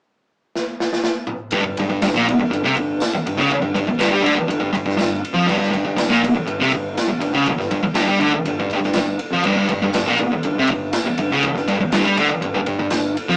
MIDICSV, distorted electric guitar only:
0, 0, Header, 1, 3, 480
1, 0, Start_track
1, 0, Tempo, 495050
1, 1492, Time_signature, 4, 2, 24, 8
1, 12962, End_track
2, 0, Start_track
2, 0, Title_t, "Distorted electric guitar"
2, 0, Program_c, 0, 30
2, 1480, Note_on_c, 0, 43, 103
2, 1599, Note_off_c, 0, 43, 0
2, 1609, Note_on_c, 0, 43, 73
2, 1730, Note_off_c, 0, 43, 0
2, 1743, Note_on_c, 0, 43, 79
2, 1828, Note_off_c, 0, 43, 0
2, 1839, Note_on_c, 0, 43, 72
2, 1950, Note_off_c, 0, 43, 0
2, 1961, Note_on_c, 0, 43, 71
2, 2080, Note_on_c, 0, 46, 102
2, 2086, Note_off_c, 0, 43, 0
2, 2198, Note_off_c, 0, 46, 0
2, 2432, Note_on_c, 0, 43, 79
2, 2553, Note_on_c, 0, 48, 94
2, 2562, Note_off_c, 0, 43, 0
2, 2675, Note_off_c, 0, 48, 0
2, 2679, Note_on_c, 0, 43, 79
2, 2877, Note_off_c, 0, 43, 0
2, 3171, Note_on_c, 0, 43, 74
2, 3276, Note_on_c, 0, 49, 114
2, 3291, Note_off_c, 0, 43, 0
2, 3396, Note_off_c, 0, 49, 0
2, 3511, Note_on_c, 0, 43, 80
2, 3622, Note_off_c, 0, 43, 0
2, 3633, Note_on_c, 0, 43, 82
2, 3742, Note_off_c, 0, 43, 0
2, 3865, Note_on_c, 0, 43, 106
2, 3978, Note_on_c, 0, 55, 102
2, 3990, Note_off_c, 0, 43, 0
2, 4094, Note_on_c, 0, 50, 111
2, 4107, Note_off_c, 0, 55, 0
2, 4224, Note_off_c, 0, 50, 0
2, 4344, Note_on_c, 0, 43, 76
2, 4447, Note_off_c, 0, 43, 0
2, 4459, Note_on_c, 0, 43, 76
2, 4569, Note_off_c, 0, 43, 0
2, 4581, Note_on_c, 0, 43, 74
2, 4696, Note_off_c, 0, 43, 0
2, 4708, Note_on_c, 0, 43, 78
2, 4811, Note_off_c, 0, 43, 0
2, 4823, Note_on_c, 0, 43, 78
2, 5027, Note_off_c, 0, 43, 0
2, 5175, Note_on_c, 0, 53, 106
2, 5298, Note_on_c, 0, 43, 108
2, 5304, Note_off_c, 0, 53, 0
2, 5399, Note_off_c, 0, 43, 0
2, 5410, Note_on_c, 0, 43, 70
2, 5528, Note_off_c, 0, 43, 0
2, 5539, Note_on_c, 0, 43, 84
2, 5656, Note_off_c, 0, 43, 0
2, 5667, Note_on_c, 0, 43, 71
2, 5772, Note_off_c, 0, 43, 0
2, 5783, Note_on_c, 0, 43, 76
2, 5908, Note_on_c, 0, 46, 99
2, 5915, Note_off_c, 0, 43, 0
2, 6031, Note_off_c, 0, 46, 0
2, 6268, Note_on_c, 0, 43, 81
2, 6389, Note_on_c, 0, 48, 104
2, 6397, Note_off_c, 0, 43, 0
2, 6509, Note_on_c, 0, 43, 74
2, 6510, Note_off_c, 0, 48, 0
2, 6710, Note_off_c, 0, 43, 0
2, 6984, Note_on_c, 0, 43, 74
2, 7113, Note_on_c, 0, 49, 103
2, 7115, Note_off_c, 0, 43, 0
2, 7232, Note_off_c, 0, 49, 0
2, 7354, Note_on_c, 0, 43, 76
2, 7468, Note_off_c, 0, 43, 0
2, 7479, Note_on_c, 0, 43, 71
2, 7581, Note_off_c, 0, 43, 0
2, 7708, Note_on_c, 0, 43, 105
2, 7830, Note_off_c, 0, 43, 0
2, 7836, Note_on_c, 0, 55, 107
2, 7946, Note_on_c, 0, 50, 102
2, 7954, Note_off_c, 0, 55, 0
2, 8069, Note_off_c, 0, 50, 0
2, 8199, Note_on_c, 0, 43, 76
2, 8323, Note_off_c, 0, 43, 0
2, 8334, Note_on_c, 0, 43, 73
2, 8450, Note_off_c, 0, 43, 0
2, 8465, Note_on_c, 0, 43, 66
2, 8569, Note_off_c, 0, 43, 0
2, 8581, Note_on_c, 0, 43, 69
2, 8673, Note_off_c, 0, 43, 0
2, 8685, Note_on_c, 0, 43, 74
2, 8878, Note_off_c, 0, 43, 0
2, 9046, Note_on_c, 0, 53, 99
2, 9158, Note_on_c, 0, 43, 108
2, 9159, Note_off_c, 0, 53, 0
2, 9268, Note_off_c, 0, 43, 0
2, 9280, Note_on_c, 0, 43, 76
2, 9391, Note_off_c, 0, 43, 0
2, 9403, Note_on_c, 0, 43, 70
2, 9511, Note_off_c, 0, 43, 0
2, 9522, Note_on_c, 0, 43, 65
2, 9634, Note_off_c, 0, 43, 0
2, 9645, Note_on_c, 0, 43, 76
2, 9754, Note_on_c, 0, 46, 104
2, 9766, Note_off_c, 0, 43, 0
2, 9874, Note_off_c, 0, 46, 0
2, 10129, Note_on_c, 0, 43, 80
2, 10249, Note_off_c, 0, 43, 0
2, 10261, Note_on_c, 0, 48, 100
2, 10367, Note_off_c, 0, 48, 0
2, 10377, Note_on_c, 0, 43, 69
2, 10565, Note_off_c, 0, 43, 0
2, 10848, Note_on_c, 0, 43, 73
2, 10968, Note_off_c, 0, 43, 0
2, 10978, Note_on_c, 0, 49, 115
2, 11087, Note_off_c, 0, 49, 0
2, 11202, Note_on_c, 0, 43, 78
2, 11312, Note_off_c, 0, 43, 0
2, 11324, Note_on_c, 0, 43, 72
2, 11434, Note_off_c, 0, 43, 0
2, 11565, Note_on_c, 0, 43, 98
2, 11680, Note_off_c, 0, 43, 0
2, 11681, Note_on_c, 0, 55, 96
2, 11798, Note_off_c, 0, 55, 0
2, 11800, Note_on_c, 0, 50, 107
2, 11918, Note_off_c, 0, 50, 0
2, 12042, Note_on_c, 0, 43, 78
2, 12151, Note_off_c, 0, 43, 0
2, 12162, Note_on_c, 0, 43, 77
2, 12268, Note_off_c, 0, 43, 0
2, 12279, Note_on_c, 0, 43, 72
2, 12393, Note_off_c, 0, 43, 0
2, 12405, Note_on_c, 0, 43, 67
2, 12511, Note_off_c, 0, 43, 0
2, 12523, Note_on_c, 0, 43, 77
2, 12720, Note_off_c, 0, 43, 0
2, 12885, Note_on_c, 0, 53, 113
2, 12962, Note_off_c, 0, 53, 0
2, 12962, End_track
3, 0, Start_track
3, 0, Title_t, "Muted distorted electric guitar strokes"
3, 2210, Note_on_c, 9, 29, 58
3, 2307, Note_off_c, 9, 29, 0
3, 2321, Note_on_c, 9, 29, 67
3, 2418, Note_off_c, 9, 29, 0
3, 3038, Note_on_c, 9, 29, 56
3, 3135, Note_off_c, 9, 29, 0
3, 3402, Note_on_c, 9, 29, 62
3, 3499, Note_off_c, 9, 29, 0
3, 3753, Note_on_c, 9, 29, 50
3, 3850, Note_off_c, 9, 29, 0
3, 4220, Note_on_c, 9, 29, 67
3, 4317, Note_off_c, 9, 29, 0
3, 6033, Note_on_c, 9, 29, 63
3, 6130, Note_off_c, 9, 29, 0
3, 6152, Note_on_c, 9, 29, 63
3, 6249, Note_off_c, 9, 29, 0
3, 6864, Note_on_c, 9, 29, 56
3, 6961, Note_off_c, 9, 29, 0
3, 7249, Note_on_c, 9, 29, 60
3, 7346, Note_off_c, 9, 29, 0
3, 7593, Note_on_c, 9, 29, 54
3, 7690, Note_off_c, 9, 29, 0
3, 8077, Note_on_c, 9, 29, 62
3, 8174, Note_off_c, 9, 29, 0
3, 9882, Note_on_c, 9, 29, 63
3, 9979, Note_off_c, 9, 29, 0
3, 10003, Note_on_c, 9, 29, 59
3, 10100, Note_off_c, 9, 29, 0
3, 10721, Note_on_c, 9, 29, 57
3, 10818, Note_off_c, 9, 29, 0
3, 11101, Note_on_c, 9, 29, 53
3, 11198, Note_off_c, 9, 29, 0
3, 11446, Note_on_c, 9, 29, 54
3, 11543, Note_off_c, 9, 29, 0
3, 11912, Note_on_c, 9, 29, 66
3, 12009, Note_off_c, 9, 29, 0
3, 12962, End_track
0, 0, End_of_file